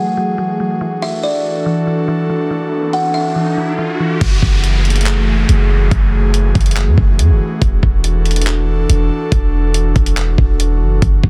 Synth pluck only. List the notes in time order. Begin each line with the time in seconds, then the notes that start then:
Already playing: F#3
0.17 F#3
0.38 F#3
0.60 F#3
0.81 E3
1.66 E3
1.87 E3
2.08 E3
2.30 E3
2.51 E3
3.36 E3
3.57 E3
3.78 E3
4.00 E3